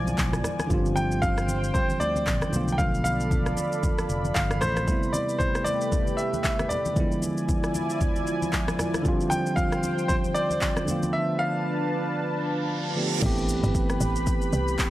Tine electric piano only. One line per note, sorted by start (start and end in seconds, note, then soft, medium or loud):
0.00 0.65 D3 medium
0.00 0.66 F3 medium
0.00 0.66 G#3 medium
0.00 0.67 B3 medium
0.00 0.68 E4 medium
0.67 2.48 D3 medium
0.67 2.48 F3 medium
0.67 2.49 G3 medium
0.72 0.78 B3 medium
0.72 2.51 F4 medium
0.78 2.53 C4 medium
2.50 4.56 D3 medium
2.50 4.57 F3 medium
2.50 4.58 A3 medium
2.55 4.58 B3 medium
2.55 4.59 F4 medium
4.85 6.91 C3 medium
4.85 6.92 G3 medium
4.85 6.92 A3 medium
4.90 6.93 B3 medium
4.90 6.94 E4 medium
6.94 9.00 D3 medium
6.94 9.00 F3 medium
6.94 9.01 G#3 medium
6.98 9.02 B3 medium
6.98 9.03 E4 medium
9.02 10.82 D3 medium
9.02 10.83 F3 medium
9.02 10.84 G3 medium
9.07 10.85 C4 medium
9.07 10.86 F4 medium
10.85 12.91 D3 medium
10.85 12.92 F3 medium
10.85 12.92 A3 medium
10.90 12.93 B3 medium
10.90 12.94 F4 medium
12.95 13.22 D3 medium
12.95 13.22 F3 medium
12.95 13.20 A3 medium
12.95 13.22 B3 medium
12.95 13.23 G4 medium
13.19 14.90 E3 medium
13.19 14.90 A3 medium
13.19 14.90 B3 medium
13.24 14.90 C4 medium
13.24 14.90 G4 medium